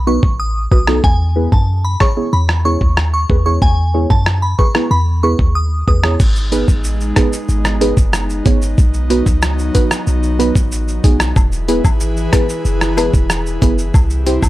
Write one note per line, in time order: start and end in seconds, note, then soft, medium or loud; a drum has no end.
0.00 0.19 B1 loud
0.07 0.20 B3 medium
0.07 0.20 D#4 medium
0.07 0.20 F#4 medium
0.07 0.20 B4 medium
0.07 0.18 C#6 medium
0.23 0.67 A1 medium
0.23 kick medium
0.40 0.50 D#6 medium
0.72 1.01 B1 medium
0.72 0.78 F#4 medium
0.72 0.78 B4 medium
0.72 0.82 D#6 medium
0.72 kick medium
0.88 1.01 B3 medium
0.88 1.01 D#4 medium
0.88 1.01 F#4 medium
0.88 1.01 A4 medium
0.88 cross-stick loud
1.04 1.48 E2 loud
1.04 1.25 G#5 loud
1.04 kick loud
1.36 1.49 B3 medium
1.36 1.49 E4 medium
1.36 1.49 G#4 medium
1.36 1.49 B4 medium
1.52 1.97 F#2 medium
1.52 1.63 A5 medium
1.52 kick medium
1.85 1.95 B5 medium
2.00 2.07 G#4 medium
2.00 2.07 C#5 medium
2.00 2.11 C#6 medium
2.00 kick medium
2.00 cross-stick medium
2.17 2.30 B3 medium
2.17 2.30 E4 medium
2.17 2.30 G#4 medium
2.17 2.30 C#5 medium
2.33 2.77 E2 medium
2.33 2.44 B5 medium
2.49 cross-stick medium
2.65 2.78 B3 medium
2.65 2.78 E4 medium
2.65 2.78 G#4 medium
2.65 2.78 C#5 medium
2.65 2.76 C#6 medium
2.81 3.25 D#2 medium
2.81 kick medium
2.97 cross-stick medium
3.14 3.24 C#6 medium
3.29 3.59 E2 medium
3.29 3.36 G#4 medium
3.29 3.36 B4 medium
3.29 kick medium
3.46 3.59 B3 medium
3.46 3.59 E4 medium
3.46 3.59 G#4 medium
3.46 3.59 C#5 medium
3.46 3.56 C#6 medium
3.62 4.06 E2 loud
3.62 3.83 G#5 loud
3.62 kick loud
3.94 4.07 B3 medium
3.94 4.07 E4 medium
3.94 4.07 G#4 medium
3.94 4.07 C#5 medium
4.10 4.55 F#2 medium
4.10 4.21 A5 medium
4.10 kick medium
4.26 cross-stick loud
4.42 4.53 B5 medium
4.59 4.65 G#4 medium
4.59 4.65 B4 medium
4.59 4.69 C#6 medium
4.59 kick medium
4.75 4.88 B3 medium
4.75 4.88 E4 medium
4.75 4.88 G#4 medium
4.75 4.88 B4 medium
4.75 cross-stick medium
4.91 5.35 E2 loud
4.91 5.02 B5 medium
5.23 5.36 B3 medium
5.23 5.36 E4 medium
5.23 5.36 G#4 medium
5.23 5.36 B4 medium
5.23 5.34 C#6 medium
5.39 5.84 D#2 medium
5.39 kick medium
5.55 5.66 D#6 medium
5.87 6.17 E2 loud
5.87 5.94 G#4 medium
5.87 5.94 B4 medium
5.87 5.98 D#6 medium
5.87 kick medium
6.03 6.17 B3 medium
6.03 6.17 E4 medium
6.03 6.17 G#4 medium
6.03 6.17 C#5 medium
6.03 cross-stick loud
6.20 6.64 G#1 loud
6.20 8.75 G#3 medium
6.20 11.32 B3 medium
6.20 11.32 D#4 medium
6.20 kick loud
6.20 crash medium
6.20 shaker medium
6.36 shaker medium
6.52 6.65 B3 medium
6.52 6.65 D#4 medium
6.52 6.65 G#4 medium
6.52 6.65 B4 medium
6.52 closed hi-hat medium
6.52 shaker soft
6.68 7.13 A1 loud
6.68 kick medium
6.68 shaker medium
6.84 shaker medium
7.01 shaker soft
7.16 7.29 B3 medium
7.16 7.29 D#4 medium
7.16 7.29 G#4 medium
7.16 7.29 B4 loud
7.16 kick medium
7.16 cross-stick medium
7.16 closed hi-hat medium
7.16 shaker medium
7.33 shaker medium
7.49 7.93 G#1 loud
7.49 shaker medium
7.65 cross-stick medium
7.65 shaker soft
7.81 7.94 B3 medium
7.81 7.94 D#4 medium
7.81 7.94 G#4 medium
7.81 7.94 B4 medium
7.81 closed hi-hat medium
7.81 shaker medium
7.97 8.42 F#1 medium
7.97 kick medium
7.97 shaker medium
8.13 cross-stick medium
8.13 shaker medium
8.30 shaker medium
8.45 8.75 G#1 medium
8.45 8.58 B3 medium
8.45 8.58 D#4 medium
8.45 8.58 G#4 medium
8.45 8.59 C#5 loud
8.45 kick medium
8.45 closed hi-hat medium
8.45 shaker medium
8.62 shaker medium
8.78 9.22 B1 loud
8.78 11.33 F#3 medium
8.78 kick loud
8.78 shaker medium
8.94 shaker medium
9.10 9.23 B3 medium
9.10 9.23 D#4 medium
9.10 9.23 F#4 medium
9.10 9.23 B4 medium
9.10 closed hi-hat medium
9.10 shaker soft
9.26 9.71 C#2 medium
9.26 kick medium
9.26 shaker medium
9.42 cross-stick loud
9.42 shaker medium
9.59 shaker soft
9.75 9.88 B3 medium
9.75 9.88 D#4 medium
9.75 9.88 F#4 medium
9.75 9.88 B4 loud
9.75 kick medium
9.75 closed hi-hat medium
9.75 shaker medium
9.91 cross-stick medium
9.91 shaker medium
10.07 10.51 B1 loud
10.07 shaker medium
10.23 shaker soft
10.39 10.52 B3 medium
10.39 10.52 D#4 medium
10.39 10.52 F#4 medium
10.39 10.52 B4 loud
10.39 closed hi-hat medium
10.39 shaker medium
10.55 11.00 A1 medium
10.55 kick medium
10.55 shaker medium
10.72 shaker medium
10.88 shaker soft
11.04 11.33 B1 medium
11.04 11.17 B3 medium
11.04 11.17 D#4 medium
11.04 11.17 F#4 medium
11.04 11.17 G#4 loud
11.04 kick medium
11.04 closed hi-hat medium
11.04 shaker medium
11.20 cross-stick loud
11.20 shaker medium
11.36 11.80 E1 loud
11.36 13.92 E3 medium
11.36 13.92 E4 medium
11.36 13.92 G#4 medium
11.36 13.92 B4 medium
11.36 kick loud
11.36 high woodblock medium
11.36 shaker medium
11.52 shaker medium
11.68 11.81 B3 medium
11.68 11.81 E4 medium
11.68 11.81 G#4 medium
11.68 11.81 B4 medium
11.68 closed hi-hat medium
11.68 cabasa medium
11.68 shaker soft
11.84 12.29 G#1 medium
11.84 kick medium
11.84 high woodblock medium
11.84 shaker medium
12.00 shaker medium
12.17 shaker soft
12.32 12.46 B3 medium
12.32 12.46 E4 medium
12.32 12.46 G#4 medium
12.32 12.46 B4 loud
12.32 kick medium
12.32 cross-stick medium
12.32 closed hi-hat medium
12.32 cabasa medium
12.32 shaker medium
12.49 shaker medium
12.65 13.09 F#1 loud
12.65 shaker medium
12.81 cross-stick medium
12.81 shaker medium
12.97 13.10 B3 medium
12.97 13.10 E4 medium
12.97 13.10 G#4 medium
12.97 13.10 B4 loud
12.97 closed hi-hat medium
12.97 cabasa medium
12.97 high woodblock medium
12.97 shaker medium
13.13 13.58 E1 medium
13.13 kick medium
13.13 shaker medium
13.30 cross-stick medium
13.30 shaker medium
13.46 shaker medium
13.62 13.91 F#1 medium
13.62 13.75 B3 medium
13.62 13.75 E4 medium
13.62 13.75 G#4 medium
13.62 13.75 B4 loud
13.62 kick medium
13.62 closed hi-hat medium
13.62 cabasa medium
13.62 shaker medium
13.78 shaker medium
13.94 14.39 C2 loud
13.94 14.49 C3 medium
13.94 14.49 C4 medium
13.94 14.49 E4 medium
13.94 14.49 G4 medium
13.94 kick loud
13.94 high woodblock medium
13.94 shaker medium
14.10 shaker medium
14.26 14.39 C4 medium
14.26 14.39 E4 medium
14.26 14.39 G4 medium
14.26 14.39 C5 medium
14.26 closed hi-hat medium
14.26 cabasa medium
14.26 shaker soft
14.42 14.49 D2 loud
14.42 kick medium
14.42 high woodblock medium
14.42 shaker medium